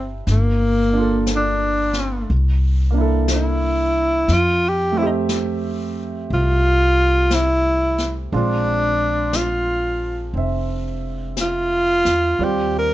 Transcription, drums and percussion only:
0, 0, Header, 1, 2, 480
1, 0, Start_track
1, 0, Tempo, 1006711
1, 123, Time_signature, 4, 2, 24, 8
1, 3483, Tempo, 1018676
1, 6137, End_track
2, 0, Start_track
2, 0, Title_t, "Drums"
2, 128, Note_on_c, 9, 25, 29
2, 128, Note_on_c, 9, 38, 24
2, 176, Note_off_c, 9, 38, 0
2, 603, Note_off_c, 9, 25, 0
2, 603, Note_on_c, 9, 25, 34
2, 603, Note_on_c, 9, 38, 38
2, 603, Note_on_c, 9, 44, 52
2, 651, Note_off_c, 9, 38, 0
2, 651, Note_off_c, 9, 44, 0
2, 921, Note_on_c, 9, 38, 24
2, 968, Note_off_c, 9, 38, 0
2, 1082, Note_off_c, 9, 25, 0
2, 1082, Note_on_c, 9, 25, 29
2, 1564, Note_off_c, 9, 25, 0
2, 1564, Note_on_c, 9, 25, 31
2, 1564, Note_on_c, 9, 38, 44
2, 1564, Note_on_c, 9, 44, 53
2, 1612, Note_off_c, 9, 38, 0
2, 1612, Note_off_c, 9, 44, 0
2, 2042, Note_off_c, 9, 25, 0
2, 2042, Note_on_c, 9, 25, 27
2, 2042, Note_on_c, 9, 38, 25
2, 2089, Note_off_c, 9, 38, 0
2, 2522, Note_off_c, 9, 25, 0
2, 2522, Note_on_c, 9, 25, 34
2, 2522, Note_on_c, 9, 38, 37
2, 2522, Note_on_c, 9, 44, 54
2, 2569, Note_off_c, 9, 38, 0
2, 2569, Note_off_c, 9, 44, 0
2, 3004, Note_off_c, 9, 25, 0
2, 3004, Note_on_c, 9, 25, 31
2, 3484, Note_off_c, 9, 25, 0
2, 3484, Note_on_c, 9, 25, 30
2, 3484, Note_on_c, 9, 38, 41
2, 3484, Note_on_c, 9, 44, 45
2, 3531, Note_off_c, 9, 38, 0
2, 3531, Note_off_c, 9, 44, 0
2, 3802, Note_on_c, 9, 38, 24
2, 3849, Note_off_c, 9, 38, 0
2, 3960, Note_off_c, 9, 25, 0
2, 3960, Note_on_c, 9, 25, 28
2, 4437, Note_off_c, 9, 25, 0
2, 4437, Note_on_c, 9, 25, 32
2, 4437, Note_on_c, 9, 38, 41
2, 4437, Note_on_c, 9, 44, 48
2, 4485, Note_off_c, 9, 38, 0
2, 4485, Note_off_c, 9, 44, 0
2, 4917, Note_off_c, 9, 25, 0
2, 4917, Note_on_c, 9, 25, 39
2, 5397, Note_off_c, 9, 25, 0
2, 5397, Note_on_c, 9, 25, 37
2, 5397, Note_on_c, 9, 38, 38
2, 5397, Note_on_c, 9, 44, 52
2, 5444, Note_off_c, 9, 38, 0
2, 5444, Note_off_c, 9, 44, 0
2, 5718, Note_on_c, 9, 38, 25
2, 5765, Note_off_c, 9, 38, 0
2, 5881, Note_off_c, 9, 25, 0
2, 5881, Note_on_c, 9, 25, 32
2, 6137, Note_off_c, 9, 25, 0
2, 6137, End_track
0, 0, End_of_file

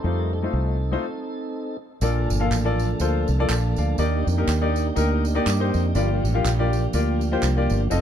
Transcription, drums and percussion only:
0, 0, Header, 1, 2, 480
1, 0, Start_track
1, 0, Key_signature, -2, "major"
1, 0, Tempo, 491803
1, 44, Time_signature, 4, 2, 24, 8
1, 7818, End_track
2, 0, Start_track
2, 0, Title_t, "Drums"
2, 1964, Note_on_c, 9, 54, 86
2, 2062, Note_off_c, 9, 54, 0
2, 2246, Note_on_c, 9, 54, 72
2, 2344, Note_off_c, 9, 54, 0
2, 2459, Note_on_c, 9, 39, 81
2, 2459, Note_on_c, 9, 54, 92
2, 2556, Note_off_c, 9, 39, 0
2, 2556, Note_off_c, 9, 54, 0
2, 2727, Note_on_c, 9, 54, 59
2, 2825, Note_off_c, 9, 54, 0
2, 2924, Note_on_c, 9, 54, 83
2, 3021, Note_off_c, 9, 54, 0
2, 3199, Note_on_c, 9, 54, 52
2, 3296, Note_off_c, 9, 54, 0
2, 3412, Note_on_c, 9, 39, 102
2, 3412, Note_on_c, 9, 54, 97
2, 3510, Note_off_c, 9, 39, 0
2, 3510, Note_off_c, 9, 54, 0
2, 3674, Note_on_c, 9, 54, 52
2, 3772, Note_off_c, 9, 54, 0
2, 3884, Note_on_c, 9, 54, 77
2, 3982, Note_off_c, 9, 54, 0
2, 4172, Note_on_c, 9, 54, 61
2, 4269, Note_off_c, 9, 54, 0
2, 4378, Note_on_c, 9, 39, 88
2, 4378, Note_on_c, 9, 54, 81
2, 4476, Note_off_c, 9, 39, 0
2, 4476, Note_off_c, 9, 54, 0
2, 4644, Note_on_c, 9, 54, 62
2, 4742, Note_off_c, 9, 54, 0
2, 4845, Note_on_c, 9, 54, 83
2, 4943, Note_off_c, 9, 54, 0
2, 5121, Note_on_c, 9, 54, 57
2, 5219, Note_off_c, 9, 54, 0
2, 5338, Note_on_c, 9, 39, 102
2, 5338, Note_on_c, 9, 54, 93
2, 5436, Note_off_c, 9, 39, 0
2, 5436, Note_off_c, 9, 54, 0
2, 5601, Note_on_c, 9, 54, 54
2, 5698, Note_off_c, 9, 54, 0
2, 5807, Note_on_c, 9, 54, 77
2, 5904, Note_off_c, 9, 54, 0
2, 6099, Note_on_c, 9, 54, 66
2, 6196, Note_off_c, 9, 54, 0
2, 6300, Note_on_c, 9, 39, 87
2, 6300, Note_on_c, 9, 54, 93
2, 6398, Note_off_c, 9, 39, 0
2, 6398, Note_off_c, 9, 54, 0
2, 6568, Note_on_c, 9, 54, 57
2, 6666, Note_off_c, 9, 54, 0
2, 6766, Note_on_c, 9, 54, 92
2, 6864, Note_off_c, 9, 54, 0
2, 7038, Note_on_c, 9, 54, 51
2, 7135, Note_off_c, 9, 54, 0
2, 7250, Note_on_c, 9, 39, 97
2, 7250, Note_on_c, 9, 54, 96
2, 7348, Note_off_c, 9, 39, 0
2, 7348, Note_off_c, 9, 54, 0
2, 7512, Note_on_c, 9, 54, 53
2, 7609, Note_off_c, 9, 54, 0
2, 7718, Note_on_c, 9, 54, 90
2, 7816, Note_off_c, 9, 54, 0
2, 7818, End_track
0, 0, End_of_file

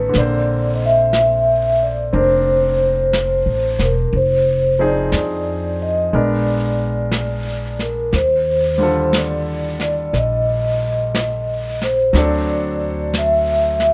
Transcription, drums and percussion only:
0, 0, Header, 1, 2, 480
1, 0, Start_track
1, 0, Tempo, 998336
1, 70, Time_signature, 4, 2, 24, 8
1, 6700, End_track
2, 0, Start_track
2, 0, Title_t, "Drums"
2, 65, Note_on_c, 9, 25, 26
2, 65, Note_on_c, 9, 38, 23
2, 113, Note_off_c, 9, 38, 0
2, 544, Note_off_c, 9, 25, 0
2, 544, Note_on_c, 9, 25, 26
2, 544, Note_on_c, 9, 38, 33
2, 544, Note_on_c, 9, 44, 38
2, 592, Note_off_c, 9, 38, 0
2, 592, Note_off_c, 9, 44, 0
2, 1024, Note_off_c, 9, 25, 0
2, 1024, Note_on_c, 9, 25, 26
2, 1506, Note_off_c, 9, 25, 0
2, 1506, Note_on_c, 9, 25, 27
2, 1506, Note_on_c, 9, 38, 36
2, 1506, Note_on_c, 9, 44, 40
2, 1554, Note_off_c, 9, 38, 0
2, 1554, Note_off_c, 9, 44, 0
2, 1823, Note_on_c, 9, 38, 23
2, 1871, Note_off_c, 9, 38, 0
2, 1978, Note_off_c, 9, 25, 0
2, 1978, Note_on_c, 9, 25, 34
2, 2462, Note_off_c, 9, 25, 0
2, 2462, Note_on_c, 9, 25, 24
2, 2462, Note_on_c, 9, 38, 34
2, 2462, Note_on_c, 9, 44, 34
2, 2510, Note_off_c, 9, 38, 0
2, 2510, Note_off_c, 9, 44, 0
2, 2944, Note_off_c, 9, 25, 0
2, 2944, Note_on_c, 9, 25, 27
2, 3421, Note_off_c, 9, 25, 0
2, 3421, Note_on_c, 9, 25, 32
2, 3421, Note_on_c, 9, 38, 35
2, 3421, Note_on_c, 9, 44, 45
2, 3469, Note_off_c, 9, 38, 0
2, 3469, Note_off_c, 9, 44, 0
2, 3747, Note_on_c, 9, 38, 20
2, 3795, Note_off_c, 9, 38, 0
2, 3907, Note_off_c, 9, 25, 0
2, 3907, Note_on_c, 9, 25, 30
2, 3907, Note_on_c, 9, 38, 24
2, 3955, Note_off_c, 9, 38, 0
2, 4389, Note_off_c, 9, 25, 0
2, 4389, Note_on_c, 9, 25, 27
2, 4389, Note_on_c, 9, 38, 33
2, 4389, Note_on_c, 9, 44, 42
2, 4437, Note_off_c, 9, 38, 0
2, 4437, Note_off_c, 9, 44, 0
2, 4710, Note_on_c, 9, 38, 22
2, 4758, Note_off_c, 9, 38, 0
2, 4874, Note_off_c, 9, 25, 0
2, 4874, Note_on_c, 9, 25, 30
2, 4874, Note_on_c, 9, 38, 22
2, 4922, Note_off_c, 9, 38, 0
2, 5359, Note_off_c, 9, 25, 0
2, 5359, Note_on_c, 9, 25, 28
2, 5359, Note_on_c, 9, 38, 37
2, 5359, Note_on_c, 9, 44, 41
2, 5407, Note_off_c, 9, 38, 0
2, 5407, Note_off_c, 9, 44, 0
2, 5681, Note_on_c, 9, 38, 23
2, 5729, Note_off_c, 9, 38, 0
2, 5839, Note_off_c, 9, 25, 0
2, 5839, Note_on_c, 9, 25, 32
2, 5839, Note_on_c, 9, 38, 24
2, 5887, Note_off_c, 9, 38, 0
2, 6316, Note_off_c, 9, 25, 0
2, 6316, Note_on_c, 9, 25, 29
2, 6316, Note_on_c, 9, 38, 35
2, 6316, Note_on_c, 9, 44, 45
2, 6364, Note_off_c, 9, 38, 0
2, 6364, Note_off_c, 9, 44, 0
2, 6634, Note_on_c, 9, 38, 22
2, 6682, Note_off_c, 9, 38, 0
2, 6700, Note_off_c, 9, 25, 0
2, 6700, End_track
0, 0, End_of_file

